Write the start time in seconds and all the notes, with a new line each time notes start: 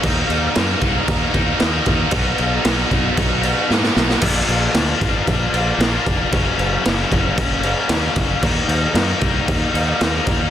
0.01 D#2 D#3 F#3 A#3 D#4, kick, crash
0.27 D#2 F#3 A#3 D#4, crash
0.54 F#2 D#3 F#3 A#3, snare, crash
0.58 D#4
0.80 C2 F#3 A#3 D#4, kick, crash
1.07 D#2 D#3 F#3 A#3 D#4, kick, crash
1.33 D#2 D#3 F#3 A#3 D#4, kick, crash
1.59 D#2 D#3 F#3 A#3 D#4, snare, crash
1.86 D#2, kick, crash
2.11 B1 B2 F#3 B3 D#4, kick, crash
2.37 B1 F#3 B3 D#4, crash
2.63 B1 B2 F#3 B3 D#4, snare, crash
2.89 B1 F#3 B3 D#4, kick, crash
3.14 B1 B2 F#3 B3 D#4, kick, crash
3.42 F#3 B3 D#4, crash
3.47 B2
3.68 G#2 B2 F#3 B3 D#4, snare
3.83 snare
3.96 B1, snare
4.10 snare
4.20 A#1 A#2 F3 A#3 D4, kick, crash
4.46 A#1 F3 A#3 D4, crash
4.73 D2 A#2 F3 A#3 D4, snare, crash
5.00 G#1 F3 A#3 D4, kick, crash
5.27 A#1, kick, crash
5.52 A#1 F3 A#3 D4, crash
5.57 A#2
5.78 A#1 A#2 F3 A#3, snare, crash
5.83 D4
6.06 F1, kick, crash
6.31 F#1 F#2 C#3 F#3 A#3 C#4, kick, crash
6.57 F#1 F#3 A#3 C#4, crash
6.83 F#1 F#2 C#3 F#3 A#3 C#4, snare, crash
7.10 F#1 F#3 A#3 C#4, kick, crash
7.37 F#1, kick, crash
7.62 C#3 F#3 A#3 C#4, crash
7.66 F#2
7.88 D#2 F#2 C#3 F#3 A#3 C#4, snare, crash
8.16 F#1, kick, snare, crash
8.41 D#2 D#3 F#3 A#3 D#4, kick, crash
8.67 D#2 A#3 D#4, crash
8.72 F#3
8.94 F#2 D#3 F#3 A#3 D#4, snare, crash
9.20 C2 F#3 A#3 D#4, kick, crash
9.48 D#2, kick, crash
9.72 D#2 F#3 A#3 D#4, crash
9.77 D#3
9.99 D#2 D#3 F#3 A#3 D#4, snare, crash
10.26 D#2, kick, crash